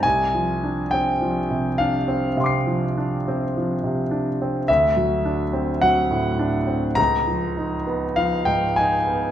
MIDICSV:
0, 0, Header, 1, 2, 480
1, 0, Start_track
1, 0, Tempo, 1167315
1, 18, Time_signature, 4, 2, 24, 8
1, 1458, Tempo, 1142857
1, 2898, Tempo, 1197605
1, 3836, End_track
2, 0, Start_track
2, 0, Title_t, "Grand piano"
2, 0, Program_c, 0, 0
2, 0, Control_c, 0, 64, 127
2, 12, Note_on_c, 0, 80, 77
2, 20, Note_on_c, 0, 36, 41
2, 25, Control_c, 0, 64, 0
2, 82, Control_c, 0, 64, 127
2, 142, Note_on_c, 0, 53, 35
2, 262, Note_on_c, 0, 62, 37
2, 331, Note_off_c, 0, 53, 0
2, 373, Note_off_c, 0, 80, 0
2, 373, Note_on_c, 0, 79, 68
2, 383, Note_on_c, 0, 60, 36
2, 451, Note_off_c, 0, 62, 0
2, 498, Note_on_c, 0, 53, 36
2, 572, Note_off_c, 0, 60, 0
2, 620, Note_on_c, 0, 48, 34
2, 690, Note_off_c, 0, 53, 0
2, 733, Note_on_c, 0, 77, 69
2, 736, Note_off_c, 0, 79, 0
2, 740, Note_on_c, 0, 62, 40
2, 811, Note_off_c, 0, 48, 0
2, 855, Note_on_c, 0, 60, 36
2, 931, Note_off_c, 0, 62, 0
2, 963, Note_off_c, 0, 36, 0
2, 970, Note_off_c, 0, 77, 0
2, 975, Note_on_c, 0, 48, 42
2, 976, Note_on_c, 0, 77, 34
2, 987, Note_on_c, 0, 84, 34
2, 1003, Note_on_c, 0, 86, 34
2, 1011, Note_on_c, 0, 96, 36
2, 1050, Note_off_c, 0, 60, 0
2, 1096, Note_on_c, 0, 53, 36
2, 1170, Note_off_c, 0, 48, 0
2, 1223, Note_on_c, 0, 62, 36
2, 1291, Note_off_c, 0, 53, 0
2, 1349, Note_on_c, 0, 60, 38
2, 1412, Note_off_c, 0, 62, 0
2, 1469, Note_on_c, 0, 53, 37
2, 1534, Note_off_c, 0, 60, 0
2, 1580, Note_on_c, 0, 48, 32
2, 1653, Note_off_c, 0, 53, 0
2, 1696, Note_on_c, 0, 62, 35
2, 1768, Note_off_c, 0, 48, 0
2, 1824, Note_on_c, 0, 60, 36
2, 1887, Note_off_c, 0, 62, 0
2, 1917, Note_off_c, 0, 77, 0
2, 1922, Note_off_c, 0, 84, 0
2, 1930, Note_off_c, 0, 86, 0
2, 1935, Note_off_c, 0, 96, 0
2, 1935, Note_on_c, 0, 76, 78
2, 1940, Note_off_c, 0, 60, 0
2, 1941, Control_c, 0, 64, 0
2, 1943, Note_on_c, 0, 38, 49
2, 2006, Control_c, 0, 64, 127
2, 2055, Note_on_c, 0, 54, 35
2, 2175, Note_on_c, 0, 62, 36
2, 2245, Note_off_c, 0, 54, 0
2, 2293, Note_on_c, 0, 60, 37
2, 2363, Note_off_c, 0, 62, 0
2, 2411, Note_off_c, 0, 76, 0
2, 2411, Note_on_c, 0, 78, 76
2, 2417, Note_on_c, 0, 54, 36
2, 2482, Note_off_c, 0, 60, 0
2, 2534, Note_on_c, 0, 45, 40
2, 2605, Note_off_c, 0, 54, 0
2, 2653, Note_on_c, 0, 62, 40
2, 2727, Note_off_c, 0, 45, 0
2, 2771, Note_on_c, 0, 60, 34
2, 2850, Note_off_c, 0, 62, 0
2, 2886, Note_off_c, 0, 38, 0
2, 2889, Note_on_c, 0, 82, 88
2, 2896, Note_on_c, 0, 37, 50
2, 2897, Note_off_c, 0, 60, 0
2, 2899, Note_off_c, 0, 78, 0
2, 2906, Control_c, 0, 64, 0
2, 2960, Control_c, 0, 64, 127
2, 3017, Note_on_c, 0, 53, 34
2, 3137, Note_on_c, 0, 63, 32
2, 3208, Note_off_c, 0, 53, 0
2, 3255, Note_on_c, 0, 59, 37
2, 3328, Note_off_c, 0, 63, 0
2, 3371, Note_off_c, 0, 82, 0
2, 3373, Note_on_c, 0, 77, 77
2, 3377, Note_on_c, 0, 53, 38
2, 3447, Note_off_c, 0, 59, 0
2, 3491, Note_on_c, 0, 79, 71
2, 3494, Note_on_c, 0, 44, 33
2, 3495, Note_off_c, 0, 77, 0
2, 3569, Note_off_c, 0, 53, 0
2, 3614, Note_off_c, 0, 79, 0
2, 3615, Note_on_c, 0, 80, 68
2, 3621, Note_on_c, 0, 63, 37
2, 3688, Note_off_c, 0, 44, 0
2, 3739, Note_on_c, 0, 59, 34
2, 3813, Note_off_c, 0, 63, 0
2, 3836, Note_off_c, 0, 37, 0
2, 3836, Note_off_c, 0, 59, 0
2, 3836, Note_off_c, 0, 80, 0
2, 3836, End_track
0, 0, End_of_file